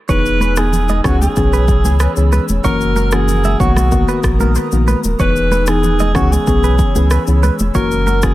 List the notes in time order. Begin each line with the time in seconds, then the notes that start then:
0.09 E1 E3 B3 D#4 G#4 B4 C#5 G#5 E6, kick, shaker
0.26 shaker
0.40 B4, high conga, shaker
0.56 E3 B3 D#4 G#4, cross-stick, shaker
0.73 low conga, shaker
0.89 D#5, high conga, shaker
1.01 C#2 E3 B3 C#4 F#4 G#4 C#5 B5, kick, cross-stick, shaker
1.05 low conga
1.21 G#4, high conga, shaker
1.36 B1 E3 B3 C#4 G#4, kick, shaker
1.53 B4, shaker
1.68 kick, shaker
1.84 C#2 E3 B3 C#4 G#4, high conga, shaker
2.00 B4, cross-stick, shaker
2.16 C#2 E3 B3 C#4 G#4, shaker
2.32 B4, high conga, shaker
2.49 E1, high conga, shaker
2.64 F#1 E3 A#3 C#4 F#4 A#4 C#5 F#5, kick, shaker
2.81 shaker
2.96 A#4, high conga, shaker
3.12 E3 A#3 C#4 F#4 G#4, cross-stick, shaker
3.28 low conga, shaker
3.44 E5, high conga, shaker
3.60 B1 D#3 A#3 B3 F#4 A#4 C#5 A#5 D#6, kick, low conga, shaker
3.76 cross-stick, high conga, shaker
3.92 D#3 A#3 B3 F#4, kick, shaker
4.08 B4, shaker
4.23 A#1, kick, cross-stick, shaker
4.40 D#3 A#3 B3 F#4 A#4, high conga, shaker
4.55 B4, shaker
4.72 A#1 D#3 A#3 B3 F#4, shaker
4.88 B4, high conga, shaker
5.04 D#1, high conga, shaker
5.19 E1 E3 B3 D#4 G#4 B4 C#5 G#5 E6, kick, shaker
5.36 shaker
5.51 B4, high conga, shaker
5.67 E3 B3 D#4 G#4, cross-stick, shaker
5.83 low conga, shaker
5.99 D#5, high conga, shaker
6.15 C#2 E3 B3 C#4 F#4 G#4 C#5 B5, kick, cross-stick, low conga, shaker
6.32 G#4, high conga, shaker
6.47 B1 E3 B3 C#4 G#4, kick, shaker
6.64 B4, shaker
6.79 kick, shaker
6.95 C#2 E3 B3 C#4 G#4, high conga, shaker
7.11 B4, cross-stick, shaker
7.27 C#2 E3 B3 C#4 G#4, shaker
7.43 B4, high conga, shaker
7.59 E1, high conga, shaker
7.75 F#1 E3 A#3 C#4 F#4 A#4 C#5 F#5, kick, shaker
7.91 shaker
8.06 A#4, high conga, shaker
8.22 E3 A#3 C#4 F#4 G#4, kick, cross-stick, shaker